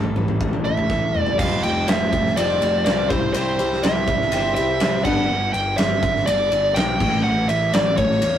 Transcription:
0.00 0.15 A1 medium
0.00 0.65 A2 medium
0.00 0.90 D4 medium
0.00 0.89 A4 medium
0.00 floor tom medium
0.16 0.40 A1 medium
0.16 0.64 E4 medium
0.16 floor tom medium
0.16 mid tom medium
0.28 floor tom medium
0.41 0.65 A1 medium
0.41 1.39 A3 medium
0.41 kick loud
0.41 floor tom medium
0.53 floor tom medium
0.65 0.89 A1 medium
0.65 1.13 E4 medium
0.65 1.21 E5 medium
0.65 floor tom medium
0.77 floor tom medium
0.90 1.14 A1 medium
0.90 1.39 A4 medium
0.90 kick medium
0.90 snare soft
1.02 high tom medium
1.14 1.39 E1 medium
1.14 1.39 E4 medium
1.14 mid tom medium
1.21 1.39 D5 medium
1.26 floor tom medium
1.39 1.62 F1 medium
1.39 1.88 F2 medium
1.39 1.88 C3 medium
1.39 1.65 F3 medium
1.39 1.65 G3 medium
1.39 1.64 C4 medium
1.39 1.62 F4 loud
1.39 1.63 F5 loud
1.39 kick loud
1.39 crash loud
1.63 1.87 F1 medium
1.63 1.86 F3 medium
1.63 1.88 G3 medium
1.63 1.89 C4 medium
1.63 1.89 F4 medium
1.63 1.86 G5 medium
1.63 ride medium
1.88 2.11 F1 medium
1.88 2.14 F3 medium
1.88 2.14 G3 medium
1.88 2.12 C4 medium
1.88 2.11 F4 medium
1.88 2.39 E5 loud
1.88 snare loud
1.88 ride loud
2.12 2.36 F1 medium
2.12 2.36 F3 medium
2.12 2.37 G3 soft
2.12 2.38 C4 medium
2.12 2.38 F4 medium
2.12 kick medium
2.12 ride medium
2.27 snare soft
2.36 2.60 F1 medium
2.36 2.85 F2 medium
2.36 2.86 C3 medium
2.36 2.63 F3 loud
2.36 2.63 G3 medium
2.36 2.61 C4 medium
2.36 2.60 F4 loud
2.36 2.84 D5 loud
2.36 ride loud
2.61 2.85 F1 medium
2.61 2.84 F3 medium
2.61 2.86 G3 medium
2.61 2.86 C4 medium
2.61 2.87 F4 medium
2.61 ride medium
2.85 3.09 C2 medium
2.85 3.09 F3 medium
2.85 3.10 G3 medium
2.85 3.10 C4 medium
2.85 3.09 F4 medium
2.85 3.09 D5 loud
2.85 snare loud
2.85 ride medium
3.09 3.33 C2 medium
3.09 3.33 C3 medium
3.09 3.33 G3 medium
3.09 3.34 C4 medium
3.09 3.35 E4 medium
3.09 3.35 G4 medium
3.09 3.36 C5 medium
3.09 3.32 C5 medium
3.09 kick loud
3.09 ride medium
3.33 3.58 C2 medium
3.33 3.83 C3 medium
3.33 3.84 G3 loud
3.33 3.60 C4 loud
3.33 3.59 E4 loud
3.33 3.58 G4 medium
3.33 3.84 C5 medium
3.33 3.58 C5 medium
3.33 ride loud
3.59 3.82 C2 medium
3.59 3.82 C4 medium
3.59 3.83 E4 medium
3.59 3.84 G4 medium
3.59 3.84 C5 medium
3.59 ride medium
3.73 snare soft
3.83 4.07 C2 loud
3.83 4.09 C4 medium
3.83 4.08 E4 medium
3.83 4.07 G4 medium
3.83 4.06 C5 medium
3.83 4.54 E5 medium
3.83 snare loud
3.83 ride loud
4.08 4.31 C2 medium
4.08 4.32 C4 medium
4.08 4.32 E4 medium
4.08 4.33 G4 medium
4.08 4.33 C5 medium
4.08 kick medium
4.08 ride medium
4.21 snare soft
4.31 4.56 G1 medium
4.31 4.81 C3 loud
4.31 4.81 G3 medium
4.31 4.57 C4 loud
4.31 4.57 E4 medium
4.31 4.56 G4 medium
4.31 4.55 C5 medium
4.31 ride loud
4.55 4.80 C2 medium
4.55 4.79 C4 medium
4.55 4.80 E4 medium
4.55 4.81 G4 medium
4.55 4.82 C5 medium
4.55 5.04 E5 loud
4.55 ride medium
4.80 5.05 C2 medium
4.80 5.04 C4 medium
4.80 5.04 E4 medium
4.80 5.03 G4 medium
4.80 5.04 C5 medium
4.80 snare loud
4.80 ride medium
5.04 5.29 G1 medium
5.04 5.29 G2 medium
5.04 5.29 D3 medium
5.04 5.29 G3 medium
5.04 5.29 B3 medium
5.04 5.28 D4 medium
5.04 5.28 G4 medium
5.04 5.53 F#5 medium
5.04 kick medium
5.04 crash medium
5.30 5.53 G1 loud
5.53 5.78 G1 medium
5.53 5.77 G5 loud
5.53 ride medium
5.77 6.02 G1 medium
5.77 6.28 E5 loud
5.77 snare loud
5.77 ride loud
6.03 6.26 G1 loud
6.03 kick medium
6.03 ride medium
6.16 snare soft
6.26 6.51 G1 loud
6.26 6.77 D5 loud
6.26 ride loud
6.51 6.75 G1 medium
6.51 ride medium
6.74 6.99 B1 medium
6.74 7.23 G5 loud
6.74 snare medium
6.74 ride medium
7.00 7.24 A1 loud
7.00 kick medium
7.00 crash medium
7.23 7.48 A1 loud
7.23 7.47 F#5 loud
7.49 7.73 A1 loud
7.49 7.75 E5 loud
7.49 ride medium
7.73 7.97 A1 loud
7.73 7.97 D5 medium
7.73 snare loud
7.73 ride loud
7.97 8.21 A1 medium
7.97 8.38 C#5 medium
7.97 kick medium
7.97 ride medium
8.11 snare soft
8.22 8.38 E2 loud
8.22 ride loud

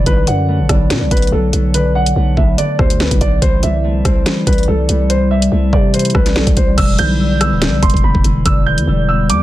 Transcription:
0.00 0.11 E3 medium
0.00 0.69 B3 medium
0.06 0.27 B1 loud
0.06 0.89 D3 loud
0.06 0.23 B4 loud
0.06 kick loud
0.06 closed hi-hat medium
0.27 0.61 F#2 loud
0.27 0.95 F#3 medium
0.27 0.67 F#5 medium
0.27 closed hi-hat medium
0.48 2.16 A3 medium
0.59 0.69 A1 loud
0.69 0.92 B1 loud
0.69 2.37 B3 medium
0.69 1.09 D5 medium
0.69 kick medium
0.69 cross-stick loud
0.69 closed hi-hat medium
0.90 1.03 B2 loud
0.90 1.73 D3 medium
0.90 snare loud
0.90 closed hi-hat medium
1.01 1.11 B1 loud
1.11 1.31 B1 loud
1.11 1.31 F#3 medium
1.11 1.28 B4 medium
1.11 kick loud
1.11 closed hi-hat medium
1.17 closed hi-hat medium
1.22 closed hi-hat medium
1.27 closed hi-hat soft
1.32 1.52 B1 loud
1.32 1.52 F#3 medium
1.32 1.72 A4 medium
1.53 2.14 B1 loud
1.53 1.79 F#3 medium
1.53 closed hi-hat medium
1.74 2.57 D3 medium
1.74 1.91 B4 medium
1.74 closed hi-hat medium
1.95 2.63 F#3 medium
1.95 2.35 F#5 medium
2.06 closed hi-hat medium
2.16 2.36 B1 loud
2.16 3.84 A3 medium
2.37 2.57 B1 loud
2.37 4.11 B3 medium
2.37 2.54 E5 medium
2.37 kick medium
2.58 3.47 D3 medium
2.58 2.75 D5 medium
2.58 closed hi-hat medium
2.79 3.10 D2 loud
2.79 2.99 F#3 medium
2.79 2.96 C5 medium
2.79 kick loud
2.79 cross-stick medium
2.90 closed hi-hat medium
3.00 3.20 F#3 medium
3.00 3.17 B4 medium
3.00 snare loud
3.11 3.20 B1 loud
3.11 kick medium
3.11 closed hi-hat medium
3.21 3.41 B1 loud
3.21 3.47 F#3 medium
3.21 3.38 D5 medium
3.21 kick medium
3.21 closed hi-hat medium
3.42 3.62 C2 loud
3.42 4.25 E3 medium
3.42 3.58 C5 loud
3.42 kick loud
3.42 closed hi-hat medium
3.63 4.03 C2 loud
3.63 4.46 G3 medium
3.63 4.02 E5 medium
3.63 closed hi-hat medium
3.84 5.51 A3 medium
4.05 4.25 C2 loud
4.05 5.73 C4 medium
4.05 4.44 C5 medium
4.05 kick medium
4.05 cross-stick loud
4.05 closed hi-hat medium
4.26 5.09 E3 medium
4.26 snare loud
4.26 closed hi-hat medium
4.47 4.67 C2 loud
4.47 4.67 G3 medium
4.47 4.63 B4 medium
4.47 kick loud
4.47 closed hi-hat medium
4.53 closed hi-hat medium
4.58 closed hi-hat medium
4.63 closed hi-hat soft
4.68 4.88 C2 loud
4.68 4.88 G3 medium
4.68 5.07 A4 medium
4.89 5.49 C2 loud
4.89 5.30 G3 medium
4.89 closed hi-hat medium
5.10 5.93 E3 medium
5.10 5.26 C5 medium
5.10 closed hi-hat medium
5.31 6.14 G3 medium
5.31 5.70 E5 medium
5.42 closed hi-hat medium
5.52 5.72 C2 loud
5.52 8.85 A3 medium
5.73 6.13 C3 loud
5.73 7.47 C4 medium
5.73 5.89 D5 medium
5.73 kick medium
5.94 6.83 E3 medium
5.94 6.10 C5 medium
5.94 closed hi-hat medium
5.99 closed hi-hat medium
6.05 closed hi-hat medium
6.10 closed hi-hat soft
6.15 6.37 C2 loud
6.15 6.35 G3 medium
6.15 6.31 B4 medium
6.15 kick loud
6.15 cross-stick loud
6.26 snare medium
6.26 closed hi-hat medium
6.36 6.46 B1 loud
6.36 6.56 G3 medium
6.36 6.52 A4 medium
6.36 snare loud
6.47 6.56 C2 loud
6.47 kick medium
6.47 closed hi-hat medium
6.57 6.77 C2 loud
6.57 6.83 G3 medium
6.57 6.73 C5 medium
6.57 kick medium
6.57 closed hi-hat medium
6.78 6.98 E1 loud
6.78 7.60 D3 loud
6.78 6.94 E6 loud
6.78 kick loud
6.78 closed hi-hat medium
6.78 crash loud
6.99 7.53 B1 loud
6.99 7.67 E3 medium
6.99 7.38 G6 loud
6.99 closed hi-hat medium
7.20 7.67 G3 medium
7.41 9.08 B3 medium
7.41 7.80 E6 medium
7.41 cross-stick loud
7.41 closed hi-hat medium
7.52 7.69 D1 loud
7.62 8.45 D3 medium
7.62 snare loud
7.62 closed hi-hat medium
7.67 7.82 B1 loud
7.82 7.93 E1 loud
7.82 8.02 E3 medium
7.82 7.99 C6 medium
7.82 kick loud
7.82 closed hi-hat medium
7.90 closed hi-hat medium
7.94 8.03 E1 loud
7.94 kick medium
7.94 closed hi-hat soft
8.03 8.14 E1 loud
8.03 8.23 E3 medium
8.03 8.43 B5 medium
8.15 8.24 E1 loud
8.15 kick medium
8.24 8.45 E1 loud
8.24 8.51 E3 medium
8.24 closed hi-hat medium
8.46 8.79 E1 loud
8.46 9.28 D3 medium
8.46 8.62 E6 medium
8.46 kick loud
8.46 closed hi-hat medium
8.66 9.34 E3 medium
8.66 9.06 G6 medium
8.78 8.87 E2 loud
8.78 closed hi-hat medium
8.87 9.31 E1 loud
8.87 9.34 G3 medium
9.08 9.43 B3 medium
9.08 9.25 E6 medium
9.29 9.43 E2 loud
9.29 9.43 D3 medium
9.29 9.43 D6 loud
9.29 closed hi-hat medium

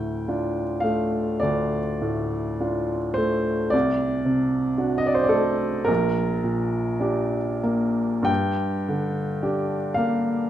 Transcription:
0.00 1.39 D2 soft
0.00 0.62 A2 soft
0.00 0.83 G5 medium
0.28 0.81 D4 soft
0.28 0.81 F4 soft
0.80 1.78 A3 soft
0.80 1.41 F5 medium
1.40 3.69 D2 soft
1.40 3.17 D5 medium
2.02 2.96 A2 soft
2.60 3.15 D4 soft
2.60 3.15 F4 soft
3.14 3.73 A3 soft
3.14 3.71 C5 medium
3.70 5.85 C2 soft
3.70 4.97 D5 medium
4.25 5.10 C3 soft
4.78 5.29 D4 soft
4.78 5.29 F#4 soft
4.98 5.07 D#5 medium
5.06 5.15 D5 medium
5.15 5.24 C5 medium
5.24 5.33 D5 medium
5.29 5.89 A3 soft
5.29 5.87 A4 medium
5.85 8.25 A#1 soft
5.85 8.27 A#4 medium
6.44 7.37 A#2 soft
7.00 7.59 D4 soft
7.00 7.60 G4 soft
7.63 8.29 A#3 soft
8.23 10.46 G2 medium
8.23 9.95 G5 medium
8.89 9.76 D3 soft
9.43 9.94 D4 soft
9.43 9.94 G4 soft
9.94 10.50 A#3 soft
9.94 10.50 F5 medium

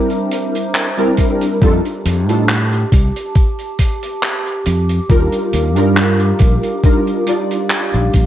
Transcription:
0.00 0.92 G3 medium
0.00 0.92 C4 medium
0.00 0.92 D4 medium
0.00 0.93 E4 medium
0.00 0.93 A#4 medium
0.00 1.58 C5 medium
0.00 1.59 E5 medium
0.00 1.58 A#5 medium
0.00 1.58 D6 medium
0.10 closed hi-hat soft
0.31 closed hi-hat medium
0.55 closed hi-hat medium
0.75 clap loud
0.75 closed hi-hat medium
0.97 1.57 G3 medium
0.97 1.57 C4 medium
0.97 1.57 D4 medium
0.97 1.57 E4 medium
0.97 1.57 A#4 loud
0.97 closed hi-hat soft
1.17 kick medium
1.17 closed hi-hat medium
1.41 closed hi-hat medium
1.61 1.78 F2 medium
1.61 1.78 G3 loud
1.61 1.78 D4 medium
1.61 1.79 D#4 medium
1.61 1.79 F4 medium
1.61 8.26 G4 medium
1.61 1.79 A4 loud
1.61 5.06 A5 medium
1.61 8.26 D6 medium
1.61 kick loud
1.61 closed hi-hat medium
1.85 closed hi-hat soft
2.05 2.29 F2 medium
2.05 closed hi-hat loud
2.28 2.83 A2 medium
2.28 2.43 G3 medium
2.28 2.43 D4 medium
2.28 2.43 D#4 medium
2.28 2.43 F4 medium
2.28 2.44 A4 medium
2.28 closed hi-hat medium
2.48 clap loud
2.48 closed hi-hat medium
2.72 closed hi-hat soft
2.92 3.09 C2 loud
2.92 kick loud
2.92 closed hi-hat loud
3.16 closed hi-hat medium
3.35 kick loud
3.35 closed hi-hat medium
3.59 closed hi-hat soft
3.79 kick medium
3.79 closed hi-hat loud
4.03 closed hi-hat medium
4.22 clap loud
4.22 closed hi-hat medium
4.46 closed hi-hat soft
4.66 4.98 F2 medium
4.66 closed hi-hat loud
4.89 closed hi-hat medium
5.09 5.26 D#2 medium
5.09 5.70 G3 medium
5.09 5.70 D4 medium
5.09 5.71 D#4 medium
5.09 5.71 F4 medium
5.09 5.71 A#4 medium
5.09 8.26 F5 medium
5.09 kick loud
5.09 closed hi-hat medium
5.32 closed hi-hat soft
5.53 5.77 D#2 medium
5.53 closed hi-hat medium
5.74 6.31 G2 medium
5.74 6.78 G3 medium
5.74 6.78 D4 medium
5.74 6.79 D#4 medium
5.74 6.79 F4 medium
5.74 6.79 A#4 medium
5.74 closed hi-hat medium
5.96 clap loud
5.96 closed hi-hat medium
6.20 closed hi-hat soft
6.39 6.57 A#1 loud
6.39 kick loud
6.39 closed hi-hat medium
6.63 closed hi-hat medium
6.83 7.23 G3 medium
6.83 7.23 D4 medium
6.83 7.23 D#4 medium
6.83 7.23 F4 medium
6.83 7.24 A#4 medium
6.83 kick loud
6.83 closed hi-hat medium
7.07 closed hi-hat soft
7.26 8.26 G3 medium
7.26 8.26 D4 medium
7.26 8.26 D#4 medium
7.26 8.26 F4 medium
7.26 8.26 D5 medium
7.26 closed hi-hat medium
7.51 closed hi-hat medium
7.70 clap loud
7.70 closed hi-hat medium
7.94 8.08 A#1 medium
7.94 closed hi-hat soft
8.13 8.26 A#1 medium
8.13 kick medium
8.13 closed hi-hat medium

